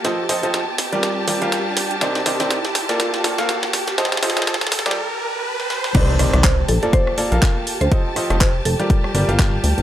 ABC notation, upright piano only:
X:1
M:4/4
L:1/16
Q:"Swing 16ths" 1/4=122
K:Fmix
V:1 name="Upright piano"
[F,FAce] z [F,FAce] [F,FAce] z3 [G,FGBd]3 [G,FGBd] [G,FGBf]4- [G,FGBf] | [C,EBcd] z [C,EBcd] [C,EBcd] z3 [B,FABd]3 [B,FABd] [B,FABf]4- [B,FABf] | [F,FAce] z [F,FAce] [F,FAce] z3 [G,FGBd] z8 | [C,EBcd] z [C,EBcd] [C,EBcd] z3 [B,FABd]3 [B,FABd] [B,FABf]4- [B,FABf] |
[F,FAce] z [F,FAce] [F,FAce] z3 [G,FGBd]3 [G,FGBd] [G,FGBf]4- [G,FGBf] |]